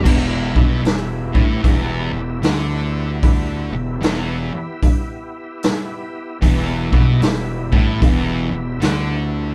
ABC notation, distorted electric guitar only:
X:1
M:4/4
L:1/8
Q:"Swing" 1/4=75
K:Em
V:1 name="Distorted electric guitar" clef=bass
E,, B,, E,, A,, E,, E,, D,2- | D, E,, E,, z4 z | E,, B,, E,, A,, E,, E,, D,2 |]